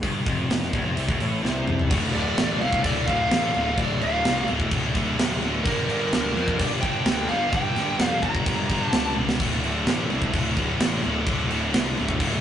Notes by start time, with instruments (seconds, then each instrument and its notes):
0.03 picked electric bass G1, distorted electric guitar G2, kick, open hi-hat
0.26 picked electric bass F1, distorted electric guitar F2, kick, open hi-hat
0.51 snare, open hi-hat
0.62 snare
0.73 picked electric bass D1, distorted electric guitar D2, kick, open hi-hat
0.85 picked electric bass F1, distorted electric guitar F2
0.96 picked electric bass C2, distorted electric guitar C3, open hi-hat
1.07 picked electric bass D1, distorted electric guitar D2, kick
1.20 picked electric bass A1, distorted electric guitar A2, open hi-hat
1.43 picked electric bass C2, distorted electric guitar C3, snare
1.67 mid tom
1.79 floor tom
1.91 picked electric bass D1, distorted electric guitar D2 A2 D3 A3 F4, kick, crash
2.13 picked electric bass D1, distorted electric guitar D2 A2 D3, lead electric guitar D5, crash
2.37 picked electric bass A1, distorted electric guitar D2 A2 D3, snare, crash
2.60 picked electric bass C2, distorted electric guitar D2 A2 D3, lead electric guitar F5, crash
2.73 kick
2.83 picked electric bass D1, distorted electric guitar D2 A2 D3, lead electric guitar D5, kick, crash
3.06 picked electric bass D1, distorted electric guitar D2 A2 D3 A3 F4, lead electric guitar F5, kick, crash
3.31 picked electric bass A1, distorted electric guitar D2 A2 D3 A3 F4, snare, crash
3.54 picked electric bass D1, distorted electric guitar D2 A2 D3, crash
3.77 picked electric bass D1, distorted electric guitar D2 A2 D3 A3 F4, lead electric guitar D5, kick, crash
4.01 picked electric bass D1, distorted electric guitar D2 A2 D3, lead electric guitar F5, crash
4.25 picked electric bass C2, distorted electric guitar D2 A2 D3, snare, crash
4.48 picked electric bass D1, distorted electric guitar D2 A2 D3, crash
4.60 kick
4.71 picked electric bass D1, distorted electric guitar D2 A2 D3, kick, crash
4.94 picked electric bass D1, distorted electric guitar D2 A2 D3 A3 F4, kick, crash
5.19 picked electric bass D1, distorted electric guitar D2 A2 D3 A3 F4, snare, crash
5.42 distorted electric guitar D2 A2 D3, crash
5.64 picked electric bass G1, distorted electric guitar G2 D3 G3 A#3 D4 G4, lead electric guitar A#4, kick, crash
5.89 picked electric bass G1, distorted electric guitar G2 D3 G3, crash
6.13 picked electric bass D2, distorted electric guitar G2 D3 G3, snare, crash
6.36 picked electric bass F2, distorted electric guitar G2 D3 G3, crash
6.48 kick
6.59 picked electric bass G1, distorted electric guitar G2 D3 G3, lead electric guitar D5, kick, crash
6.81 picked electric bass G1, distorted electric guitar G2 D3 G3 A#3 D4 G4, lead electric guitar G5, kick, crash
7.06 picked electric bass D2, distorted electric guitar G2 D3 G3 A#3 D4 G4, snare, crash
7.29 picked electric bass G1, distorted electric guitar G2 D3 G3, lead electric guitar F5, crash
7.50 picked electric bass G1, distorted electric guitar G2 D3 A#3, lead electric guitar G5, kick, crash
7.54 distorted electric guitar G3 D4 G4
7.76 picked electric bass G1, distorted electric guitar G2 D3 G3, snare, crash
7.99 picked electric bass F2, distorted electric guitar G2 D3 G3, snare, crash
8.05 lead electric guitar F5
8.22 picked electric bass G1, distorted electric guitar G2 D3 G3, lead electric guitar A#5, kick, crash
8.35 kick
8.45 picked electric bass G1, distorted electric guitar G2 D3 G3, kick, crash
8.69 picked electric bass G1, distorted electric guitar G2 D3 G3 A#3 D4 G4, kick, crash
8.83 lead electric guitar A5
8.93 picked electric bass C#2, distorted electric guitar G2 D3 G3 A#3 D4 G4, snare, crash
9.17 distorted electric guitar G2 D3 G3, high tom
9.29 snare
9.40 picked electric bass D1, distorted electric guitar D2 A2 D3 A3 F4, kick, crash
9.63 picked electric bass D1, distorted electric guitar D2 A2 D3, crash
9.87 picked electric bass A1, distorted electric guitar D2 A2 D3, snare, crash
10.10 picked electric bass C2, distorted electric guitar D2 A2 D3, crash
10.22 kick
10.33 picked electric bass D1, distorted electric guitar D2 A2 D3, kick, crash
10.55 picked electric bass D1, distorted electric guitar D2 A2 D3 A3 F4, kick, crash
10.79 picked electric bass A1, distorted electric guitar D2 A2 D3 A3 F4, snare, crash
11.03 picked electric bass D1, distorted electric guitar D2 A2 D3, crash
11.26 picked electric bass D1, distorted electric guitar D2 A2 D3 A3 F4, kick, crash
11.49 picked electric bass D1, distorted electric guitar D2 A2 D3, crash
11.73 picked electric bass C2, distorted electric guitar D2 A2 D3, snare, crash
11.97 picked electric bass D1, distorted electric guitar D2 A2 D3, crash
12.09 kick
12.20 picked electric bass D1, distorted electric guitar D2 A2 D3, kick, crash